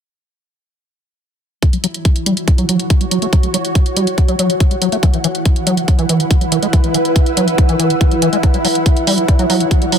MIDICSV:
0, 0, Header, 1, 5, 480
1, 0, Start_track
1, 0, Tempo, 425532
1, 1833, Time_signature, 4, 2, 24, 8
1, 11264, End_track
2, 0, Start_track
2, 0, Title_t, "Ambient pad"
2, 0, Program_c, 0, 92
2, 1833, Note_on_c, 0, 66, 81
2, 2254, Note_on_c, 0, 73, 84
2, 2633, Note_on_c, 0, 78, 79
2, 5673, Note_on_c, 0, 64, 84
2, 5858, Note_on_c, 0, 71, 90
2, 7027, Note_off_c, 0, 73, 0
2, 7092, Note_on_c, 0, 88, 87
2, 7209, Note_off_c, 0, 66, 0
2, 9513, Note_on_c, 0, 66, 74
2, 9713, Note_on_c, 0, 73, 88
2, 10182, Note_off_c, 0, 88, 0
2, 10695, Note_off_c, 0, 64, 0
2, 11049, Note_off_c, 0, 71, 0
2, 11264, Note_off_c, 0, 66, 0
2, 11264, Note_off_c, 0, 73, 0
2, 11264, Note_off_c, 0, 78, 0
2, 11264, End_track
3, 0, Start_track
3, 0, Title_t, "Synth texture"
3, 0, Program_c, 1, 99
3, 1833, Note_on_c, 1, 52, 82
3, 1833, Note_on_c, 1, 64, 85
3, 11264, Note_off_c, 1, 52, 0
3, 11264, Note_off_c, 1, 64, 0
3, 11264, End_track
4, 0, Start_track
4, 0, Title_t, "Acid bass"
4, 0, Program_c, 2, 38
4, 1833, Note_on_c, 2, 54, 99
4, 1865, Note_off_c, 2, 54, 0
4, 1953, Note_on_c, 2, 54, 76
4, 2006, Note_off_c, 2, 54, 0
4, 2072, Note_on_c, 2, 54, 105
4, 2105, Note_off_c, 2, 54, 0
4, 2552, Note_on_c, 2, 55, 100
4, 2673, Note_on_c, 2, 54, 78
4, 2690, Note_off_c, 2, 55, 0
4, 2753, Note_off_c, 2, 54, 0
4, 2913, Note_on_c, 2, 54, 102
4, 2993, Note_off_c, 2, 54, 0
4, 3033, Note_on_c, 2, 54, 100
4, 3153, Note_on_c, 2, 52, 77
4, 3169, Note_off_c, 2, 54, 0
4, 3206, Note_off_c, 2, 52, 0
4, 3273, Note_on_c, 2, 66, 84
4, 3305, Note_off_c, 2, 66, 0
4, 3392, Note_on_c, 2, 55, 73
4, 3446, Note_off_c, 2, 55, 0
4, 3513, Note_on_c, 2, 54, 98
4, 3593, Note_off_c, 2, 54, 0
4, 3633, Note_on_c, 2, 57, 101
4, 3686, Note_off_c, 2, 57, 0
4, 3753, Note_on_c, 2, 54, 99
4, 3785, Note_off_c, 2, 54, 0
4, 3873, Note_on_c, 2, 54, 78
4, 3926, Note_off_c, 2, 54, 0
4, 3993, Note_on_c, 2, 54, 103
4, 4025, Note_off_c, 2, 54, 0
4, 4473, Note_on_c, 2, 55, 101
4, 4593, Note_on_c, 2, 54, 78
4, 4610, Note_off_c, 2, 55, 0
4, 4673, Note_off_c, 2, 54, 0
4, 4833, Note_on_c, 2, 54, 104
4, 4913, Note_off_c, 2, 54, 0
4, 4953, Note_on_c, 2, 54, 99
4, 5073, Note_on_c, 2, 52, 76
4, 5090, Note_off_c, 2, 54, 0
4, 5126, Note_off_c, 2, 52, 0
4, 5193, Note_on_c, 2, 66, 81
4, 5225, Note_off_c, 2, 66, 0
4, 5312, Note_on_c, 2, 55, 73
4, 5366, Note_off_c, 2, 55, 0
4, 5433, Note_on_c, 2, 54, 99
4, 5513, Note_off_c, 2, 54, 0
4, 5553, Note_on_c, 2, 57, 104
4, 5606, Note_off_c, 2, 57, 0
4, 5673, Note_on_c, 2, 52, 102
4, 5705, Note_off_c, 2, 52, 0
4, 5793, Note_on_c, 2, 52, 78
4, 5846, Note_off_c, 2, 52, 0
4, 5913, Note_on_c, 2, 52, 101
4, 5945, Note_off_c, 2, 52, 0
4, 6393, Note_on_c, 2, 54, 103
4, 6513, Note_on_c, 2, 52, 76
4, 6530, Note_off_c, 2, 54, 0
4, 6593, Note_off_c, 2, 52, 0
4, 6753, Note_on_c, 2, 52, 102
4, 6833, Note_off_c, 2, 52, 0
4, 6873, Note_on_c, 2, 52, 96
4, 6993, Note_on_c, 2, 51, 79
4, 7010, Note_off_c, 2, 52, 0
4, 7046, Note_off_c, 2, 51, 0
4, 7113, Note_on_c, 2, 64, 84
4, 7145, Note_off_c, 2, 64, 0
4, 7233, Note_on_c, 2, 54, 74
4, 7286, Note_off_c, 2, 54, 0
4, 7353, Note_on_c, 2, 52, 98
4, 7433, Note_off_c, 2, 52, 0
4, 7473, Note_on_c, 2, 56, 101
4, 7527, Note_off_c, 2, 56, 0
4, 7593, Note_on_c, 2, 52, 100
4, 7625, Note_off_c, 2, 52, 0
4, 7713, Note_on_c, 2, 52, 77
4, 7766, Note_off_c, 2, 52, 0
4, 7834, Note_on_c, 2, 52, 105
4, 7865, Note_off_c, 2, 52, 0
4, 8313, Note_on_c, 2, 54, 99
4, 8433, Note_on_c, 2, 52, 77
4, 8450, Note_off_c, 2, 54, 0
4, 8513, Note_off_c, 2, 52, 0
4, 8673, Note_on_c, 2, 52, 104
4, 8753, Note_off_c, 2, 52, 0
4, 8793, Note_on_c, 2, 52, 100
4, 8913, Note_on_c, 2, 51, 77
4, 8930, Note_off_c, 2, 52, 0
4, 8966, Note_off_c, 2, 51, 0
4, 9033, Note_on_c, 2, 64, 83
4, 9065, Note_off_c, 2, 64, 0
4, 9153, Note_on_c, 2, 54, 77
4, 9206, Note_off_c, 2, 54, 0
4, 9273, Note_on_c, 2, 52, 97
4, 9353, Note_off_c, 2, 52, 0
4, 9393, Note_on_c, 2, 56, 105
4, 9446, Note_off_c, 2, 56, 0
4, 9513, Note_on_c, 2, 54, 98
4, 9545, Note_off_c, 2, 54, 0
4, 9633, Note_on_c, 2, 54, 77
4, 9686, Note_off_c, 2, 54, 0
4, 9753, Note_on_c, 2, 54, 104
4, 9785, Note_off_c, 2, 54, 0
4, 10233, Note_on_c, 2, 55, 99
4, 10353, Note_on_c, 2, 54, 79
4, 10370, Note_off_c, 2, 55, 0
4, 10433, Note_off_c, 2, 54, 0
4, 10593, Note_on_c, 2, 54, 105
4, 10673, Note_off_c, 2, 54, 0
4, 10713, Note_on_c, 2, 54, 101
4, 10833, Note_on_c, 2, 52, 77
4, 10850, Note_off_c, 2, 54, 0
4, 10886, Note_off_c, 2, 52, 0
4, 10953, Note_on_c, 2, 66, 85
4, 10985, Note_off_c, 2, 66, 0
4, 11073, Note_on_c, 2, 55, 73
4, 11126, Note_off_c, 2, 55, 0
4, 11193, Note_on_c, 2, 54, 96
4, 11264, Note_off_c, 2, 54, 0
4, 11264, End_track
5, 0, Start_track
5, 0, Title_t, "Drums"
5, 1833, Note_on_c, 9, 36, 118
5, 1833, Note_on_c, 9, 42, 67
5, 1945, Note_off_c, 9, 42, 0
5, 1946, Note_off_c, 9, 36, 0
5, 1952, Note_on_c, 9, 42, 41
5, 2065, Note_off_c, 9, 42, 0
5, 2072, Note_on_c, 9, 42, 94
5, 2185, Note_off_c, 9, 42, 0
5, 2193, Note_on_c, 9, 42, 38
5, 2306, Note_off_c, 9, 42, 0
5, 2313, Note_on_c, 9, 36, 108
5, 2313, Note_on_c, 9, 42, 66
5, 2426, Note_off_c, 9, 36, 0
5, 2426, Note_off_c, 9, 42, 0
5, 2433, Note_on_c, 9, 42, 39
5, 2545, Note_off_c, 9, 42, 0
5, 2553, Note_on_c, 9, 42, 97
5, 2665, Note_off_c, 9, 42, 0
5, 2673, Note_on_c, 9, 42, 40
5, 2786, Note_off_c, 9, 42, 0
5, 2793, Note_on_c, 9, 36, 114
5, 2793, Note_on_c, 9, 42, 69
5, 2906, Note_off_c, 9, 36, 0
5, 2906, Note_off_c, 9, 42, 0
5, 2913, Note_on_c, 9, 42, 41
5, 3025, Note_off_c, 9, 42, 0
5, 3033, Note_on_c, 9, 42, 91
5, 3146, Note_off_c, 9, 42, 0
5, 3153, Note_on_c, 9, 42, 40
5, 3265, Note_off_c, 9, 42, 0
5, 3273, Note_on_c, 9, 36, 119
5, 3273, Note_on_c, 9, 42, 68
5, 3385, Note_off_c, 9, 42, 0
5, 3386, Note_off_c, 9, 36, 0
5, 3393, Note_on_c, 9, 42, 41
5, 3506, Note_off_c, 9, 42, 0
5, 3513, Note_on_c, 9, 42, 96
5, 3626, Note_off_c, 9, 42, 0
5, 3633, Note_on_c, 9, 42, 40
5, 3746, Note_off_c, 9, 42, 0
5, 3753, Note_on_c, 9, 36, 118
5, 3753, Note_on_c, 9, 42, 67
5, 3866, Note_off_c, 9, 36, 0
5, 3866, Note_off_c, 9, 42, 0
5, 3873, Note_on_c, 9, 42, 39
5, 3986, Note_off_c, 9, 42, 0
5, 3993, Note_on_c, 9, 42, 92
5, 4106, Note_off_c, 9, 42, 0
5, 4113, Note_on_c, 9, 42, 38
5, 4226, Note_off_c, 9, 42, 0
5, 4233, Note_on_c, 9, 36, 119
5, 4233, Note_on_c, 9, 42, 63
5, 4346, Note_off_c, 9, 36, 0
5, 4346, Note_off_c, 9, 42, 0
5, 4353, Note_on_c, 9, 42, 40
5, 4466, Note_off_c, 9, 42, 0
5, 4473, Note_on_c, 9, 42, 89
5, 4586, Note_off_c, 9, 42, 0
5, 4593, Note_on_c, 9, 42, 39
5, 4705, Note_off_c, 9, 42, 0
5, 4713, Note_on_c, 9, 36, 117
5, 4713, Note_on_c, 9, 42, 66
5, 4826, Note_off_c, 9, 36, 0
5, 4826, Note_off_c, 9, 42, 0
5, 4833, Note_on_c, 9, 42, 39
5, 4946, Note_off_c, 9, 42, 0
5, 4953, Note_on_c, 9, 42, 90
5, 5065, Note_off_c, 9, 42, 0
5, 5073, Note_on_c, 9, 42, 40
5, 5186, Note_off_c, 9, 42, 0
5, 5193, Note_on_c, 9, 36, 123
5, 5193, Note_on_c, 9, 42, 66
5, 5306, Note_off_c, 9, 36, 0
5, 5306, Note_off_c, 9, 42, 0
5, 5313, Note_on_c, 9, 42, 39
5, 5426, Note_off_c, 9, 42, 0
5, 5433, Note_on_c, 9, 42, 90
5, 5546, Note_off_c, 9, 42, 0
5, 5553, Note_on_c, 9, 42, 40
5, 5666, Note_off_c, 9, 42, 0
5, 5673, Note_on_c, 9, 36, 121
5, 5673, Note_on_c, 9, 42, 62
5, 5786, Note_off_c, 9, 36, 0
5, 5786, Note_off_c, 9, 42, 0
5, 5793, Note_on_c, 9, 42, 38
5, 5906, Note_off_c, 9, 42, 0
5, 5913, Note_on_c, 9, 42, 87
5, 6026, Note_off_c, 9, 42, 0
5, 6033, Note_on_c, 9, 42, 37
5, 6146, Note_off_c, 9, 42, 0
5, 6153, Note_on_c, 9, 36, 122
5, 6153, Note_on_c, 9, 42, 62
5, 6265, Note_off_c, 9, 42, 0
5, 6266, Note_off_c, 9, 36, 0
5, 6273, Note_on_c, 9, 42, 38
5, 6385, Note_off_c, 9, 42, 0
5, 6392, Note_on_c, 9, 42, 90
5, 6505, Note_off_c, 9, 42, 0
5, 6513, Note_on_c, 9, 42, 39
5, 6626, Note_off_c, 9, 42, 0
5, 6633, Note_on_c, 9, 36, 124
5, 6633, Note_on_c, 9, 42, 62
5, 6746, Note_off_c, 9, 36, 0
5, 6746, Note_off_c, 9, 42, 0
5, 6753, Note_on_c, 9, 42, 38
5, 6866, Note_off_c, 9, 42, 0
5, 6873, Note_on_c, 9, 42, 88
5, 6986, Note_off_c, 9, 42, 0
5, 6993, Note_on_c, 9, 42, 37
5, 7106, Note_off_c, 9, 42, 0
5, 7113, Note_on_c, 9, 36, 124
5, 7113, Note_on_c, 9, 42, 64
5, 7226, Note_off_c, 9, 36, 0
5, 7226, Note_off_c, 9, 42, 0
5, 7233, Note_on_c, 9, 42, 38
5, 7346, Note_off_c, 9, 42, 0
5, 7353, Note_on_c, 9, 42, 86
5, 7466, Note_off_c, 9, 42, 0
5, 7473, Note_on_c, 9, 42, 38
5, 7586, Note_off_c, 9, 42, 0
5, 7593, Note_on_c, 9, 36, 119
5, 7593, Note_on_c, 9, 42, 62
5, 7706, Note_off_c, 9, 36, 0
5, 7706, Note_off_c, 9, 42, 0
5, 7713, Note_on_c, 9, 42, 36
5, 7826, Note_off_c, 9, 42, 0
5, 7833, Note_on_c, 9, 42, 89
5, 7946, Note_off_c, 9, 42, 0
5, 7953, Note_on_c, 9, 42, 35
5, 8066, Note_off_c, 9, 42, 0
5, 8073, Note_on_c, 9, 36, 116
5, 8073, Note_on_c, 9, 42, 59
5, 8186, Note_off_c, 9, 36, 0
5, 8186, Note_off_c, 9, 42, 0
5, 8193, Note_on_c, 9, 42, 37
5, 8306, Note_off_c, 9, 42, 0
5, 8313, Note_on_c, 9, 42, 85
5, 8426, Note_off_c, 9, 42, 0
5, 8433, Note_on_c, 9, 42, 37
5, 8546, Note_off_c, 9, 42, 0
5, 8553, Note_on_c, 9, 36, 121
5, 8553, Note_on_c, 9, 42, 62
5, 8666, Note_off_c, 9, 36, 0
5, 8666, Note_off_c, 9, 42, 0
5, 8673, Note_on_c, 9, 42, 37
5, 8786, Note_off_c, 9, 42, 0
5, 8793, Note_on_c, 9, 42, 84
5, 8906, Note_off_c, 9, 42, 0
5, 8913, Note_on_c, 9, 42, 36
5, 9026, Note_off_c, 9, 42, 0
5, 9033, Note_on_c, 9, 36, 124
5, 9033, Note_on_c, 9, 42, 63
5, 9146, Note_off_c, 9, 36, 0
5, 9146, Note_off_c, 9, 42, 0
5, 9153, Note_on_c, 9, 42, 36
5, 9266, Note_off_c, 9, 42, 0
5, 9273, Note_on_c, 9, 42, 82
5, 9386, Note_off_c, 9, 42, 0
5, 9393, Note_on_c, 9, 42, 36
5, 9506, Note_off_c, 9, 42, 0
5, 9513, Note_on_c, 9, 36, 115
5, 9513, Note_on_c, 9, 42, 63
5, 9626, Note_off_c, 9, 36, 0
5, 9626, Note_off_c, 9, 42, 0
5, 9633, Note_on_c, 9, 42, 36
5, 9746, Note_off_c, 9, 42, 0
5, 9753, Note_on_c, 9, 46, 105
5, 9866, Note_off_c, 9, 46, 0
5, 9873, Note_on_c, 9, 42, 36
5, 9986, Note_off_c, 9, 42, 0
5, 9993, Note_on_c, 9, 36, 112
5, 9993, Note_on_c, 9, 42, 59
5, 10106, Note_off_c, 9, 36, 0
5, 10106, Note_off_c, 9, 42, 0
5, 10113, Note_on_c, 9, 42, 36
5, 10226, Note_off_c, 9, 42, 0
5, 10233, Note_on_c, 9, 46, 105
5, 10346, Note_off_c, 9, 46, 0
5, 10353, Note_on_c, 9, 42, 37
5, 10466, Note_off_c, 9, 42, 0
5, 10473, Note_on_c, 9, 36, 113
5, 10473, Note_on_c, 9, 42, 64
5, 10586, Note_off_c, 9, 36, 0
5, 10586, Note_off_c, 9, 42, 0
5, 10593, Note_on_c, 9, 42, 38
5, 10706, Note_off_c, 9, 42, 0
5, 10713, Note_on_c, 9, 46, 103
5, 10826, Note_off_c, 9, 46, 0
5, 10834, Note_on_c, 9, 42, 37
5, 10946, Note_off_c, 9, 42, 0
5, 10953, Note_on_c, 9, 36, 120
5, 10953, Note_on_c, 9, 42, 62
5, 11066, Note_off_c, 9, 36, 0
5, 11066, Note_off_c, 9, 42, 0
5, 11073, Note_on_c, 9, 42, 37
5, 11186, Note_off_c, 9, 42, 0
5, 11193, Note_on_c, 9, 46, 101
5, 11264, Note_off_c, 9, 46, 0
5, 11264, End_track
0, 0, End_of_file